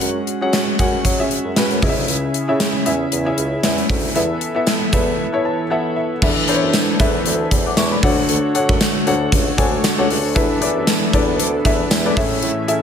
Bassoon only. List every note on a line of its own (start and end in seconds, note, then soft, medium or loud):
0.01 0.21 F#2 loud
0.41 0.61 F#3 medium
0.79 0.98 F#2 medium
1.05 1.24 F#3 loud
1.45 1.54 F#2 medium
1.71 1.80 F#2 medium
1.82 1.93 C#2 medium
1.97 2.05 D2 medium
2.08 2.28 C#2 loud
2.49 2.68 C#3 medium
2.86 3.05 E2 medium
3.12 3.31 E2 medium
3.38 3.57 C#2 medium
3.63 3.83 E2 medium
3.90 4.09 D2 medium
4.15 4.35 E2 loud
4.93 5.12 E2 medium
6.22 6.33 E2 loud
6.62 6.71 F#2 medium
7.00 7.19 E2 loud
7.26 7.45 D2 medium
7.51 7.71 E2 medium
7.78 7.97 E2 medium
8.03 8.22 D2 loud
8.29 8.40 D2 loud
8.69 8.78 F#2 medium
9.06 9.26 D2 medium
9.32 9.52 C#2 medium
9.58 9.78 D2 loud
9.98 10.07 C#2 medium
10.10 10.21 C#2 loud
10.24 10.33 D2 medium
10.36 10.47 E2 loud
10.76 10.85 F#2 medium
11.13 11.41 E2 medium
11.39 11.59 D2 medium
11.65 11.85 E2 medium
11.91 12.10 E2 loud
12.17 12.36 A2 loud
12.42 12.53 A2 loud